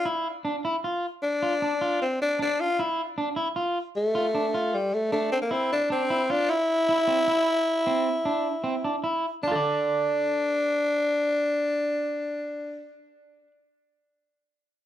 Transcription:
0.05 clean electric guitar E4
0.45 clean electric guitar D4
0.65 clean electric guitar E4
0.84 clean electric guitar F4
1.23 tenor saxophone D4
1.43 clean electric guitar F4
1.62 clean electric guitar D4
1.81 clean electric guitar F4
2.02 tenor saxophone C4
2.22 tenor saxophone D4
2.39 clean electric guitar D4, tenor saxophone D4
2.61 tenor saxophone F4
2.79 clean electric guitar E4
3.18 clean electric guitar D4
3.36 clean electric guitar E4
3.56 clean electric guitar F4
3.96 tenor saxophone A3
4.15 clean electric guitar F4
4.35 clean electric guitar D4
4.54 clean electric guitar F4
4.74 tenor saxophone G3
4.94 tenor saxophone A3
5.12 tenor saxophone A3, clean electric guitar D4
5.32 tenor saxophone C4
5.42 tenor saxophone A#3
5.51 tenor saxophone C4, clean electric guitar E4
5.72 tenor saxophone D4
5.90 tenor saxophone C4, clean electric guitar D4
6.10 clean electric guitar E4
6.30 tenor saxophone D4, clean electric guitar F4
6.50 tenor saxophone E4
6.89 clean electric guitar E4
7.08 clean electric guitar C4
7.28 clean electric guitar E4
7.87 clean electric guitar C4
8.25 clean electric guitar D4
8.64 clean electric guitar C4
8.84 clean electric guitar D4
9.04 clean electric guitar E4
9.43 clean electric guitar D4, tenor saxophone D4
9.47 clean electric guitar F4
9.52 clean electric guitar A4
9.56 clean electric guitar D5

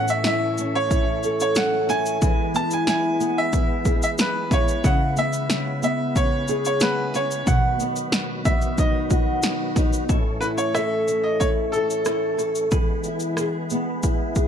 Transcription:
Already playing: steel-string acoustic guitar A2 C#4, tonewheel organ E3 A3 C#4 A4 C#5
0.08 upright piano E5, shaker
0.24 steel-string acoustic guitar E4, upright piano E5, snare, shaker
0.58 steel-string acoustic guitar C#4, shaker
0.75 upright piano C#5
0.91 steel-string acoustic guitar E4, kick, shaker
1.23 steel-string acoustic guitar A4, shaker
1.40 upright piano C#5, shaker
1.55 steel-string acoustic guitar C#4, upright piano F#5, snare, shaker
1.89 steel-string acoustic guitar E4, upright piano G#5, snare, shaker
2.06 shaker
2.20 steel-string acoustic guitar E3, tonewheel organ G#3 B3 G#4 B4, kick, shaker
2.54 steel-string acoustic guitar B3, upright piano A5, shaker
2.71 upright piano G#5, shaker
2.87 steel-string acoustic guitar E4, upright piano G#5, snare, shaker
3.20 steel-string acoustic guitar B3, shaker
3.38 upright piano E5
3.53 steel-string acoustic guitar E4, kick, shaker
3.85 steel-string acoustic guitar G#4, kick, shaker
4.03 upright piano E5, shaker
4.18 steel-string acoustic guitar B3, upright piano B4, snare, shaker
4.51 steel-string acoustic guitar E4, upright piano C#5, kick, snare, shaker
4.68 shaker
4.84 tonewheel organ C#3 E4, steel-string acoustic guitar C#3, upright piano F#5, kick, shaker
5.17 steel-string acoustic guitar B3, upright piano E5, shaker
5.33 shaker
5.50 steel-string acoustic guitar C#4, snare, shaker
5.83 steel-string acoustic guitar B3, upright piano E5, shaker
6.16 steel-string acoustic guitar C#4, upright piano C#5, kick, shaker
6.48 steel-string acoustic guitar G#4, shaker
6.65 upright piano C#5, shaker
6.80 steel-string acoustic guitar B3, upright piano B4, snare, shaker
7.14 steel-string acoustic guitar C#4, upright piano C#5, snare, shaker
7.31 shaker
7.46 steel-string acoustic guitar B2, tonewheel organ D#3 F#3 F#4, upright piano F#5, kick, shaker
7.80 steel-string acoustic guitar B3, shaker
7.96 shaker
8.12 snare, shaker
8.45 steel-string acoustic guitar B3, upright piano E5, kick, shaker
8.62 shaker
8.78 steel-string acoustic guitar D#4, upright piano D#5, kick, shaker
9.10 steel-string acoustic guitar F#4, kick, shaker
9.43 steel-string acoustic guitar B3, snare, shaker
9.76 steel-string acoustic guitar D#4, kick, snare, shaker
9.93 shaker
10.09 steel-string acoustic guitar A2, tonewheel organ E3 A3 C#4 A4 C#5, kick, shaker
10.41 steel-string acoustic guitar E4, upright piano B4, shaker
10.58 upright piano C#5, shaker
10.74 steel-string acoustic guitar A4, upright piano E5, cross-stick, shaker
11.08 steel-string acoustic guitar C#4, shaker
11.23 upright piano D#5
11.40 steel-string acoustic guitar E4, upright piano C#5, kick, shaker
11.72 upright piano A4, steel-string acoustic guitar A4, shaker
11.90 shaker
12.05 steel-string acoustic guitar E4, cross-stick, shaker
12.37 steel-string acoustic guitar A4, cross-stick, shaker
12.55 shaker
12.71 steel-string acoustic guitar E3, tonewheel organ E3 G#3 B3 G#4 B4, kick, shaker
13.04 steel-string acoustic guitar E4, shaker
13.20 shaker
13.37 steel-string acoustic guitar G#4, cross-stick, shaker
13.70 steel-string acoustic guitar B3, shaker
14.03 steel-string acoustic guitar E4, kick, shaker
14.36 steel-string acoustic guitar G#4, kick, shaker

